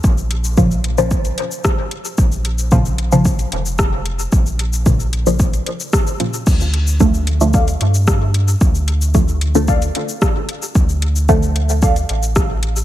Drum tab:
CC |----------------|----------------|----------------|x---------------|
HH |--x---x--xx---x-|--x---x--xx---x-|--x---x--xx---x-|--x---x--xx---x-|
SH |xx-xxx-xxx-xx--x|xx-xxx-xxx-xx--x|xx-xxx-xxx-xxx-x|xx-xxx-xxx-xx--x|
SD |------------r---|------------r---|------------r---|------------r---|
BD |o---o---o---o---|o---o---o---o---|o---o---o---o---|o---o---o---o---|

CC |----------------|----------------|
HH |--x---x--xx---x-|--x---x--xx---x-|
SH |xx-xxx-xxx-xx--x|xx-xxx-xxx-xx--x|
SD |------------r---|------------r---|
BD |o---o---o---o---|o---o---o---o---|